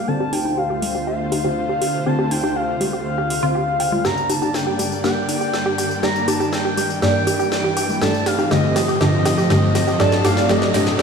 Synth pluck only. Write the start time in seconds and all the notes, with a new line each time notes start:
0.20 G4
0.33 G4
0.58 G4
0.70 G4
0.95 G4
1.07 G4
1.32 G4
1.44 G4
1.69 G4
1.82 G4
2.06 G4
2.19 G4
2.44 G4
2.56 G4
2.81 G4
2.93 G4
3.18 G4
3.43 F4
3.55 G4
3.80 G5
3.92 F4
4.05 G4
4.30 G4
4.42 G4
4.67 G4
4.79 G4
5.04 G4
5.29 G4
5.41 G4
5.66 G4
5.78 G4
6.03 G4
6.28 G4
6.40 G4
6.65 G4
6.77 G4
7.02 G4
7.27 G4
7.40 G4
7.64 G4
7.77 G4
8.01 G4
8.26 G4
8.39 G4
8.51 G4
8.76 G4
8.88 G4
9.01 G4
9.26 G4
9.38 G4
9.50 G4
9.75 G4
9.87 G4
10.00 G4
10.25 G4
10.49 G4
10.74 G4
10.99 G4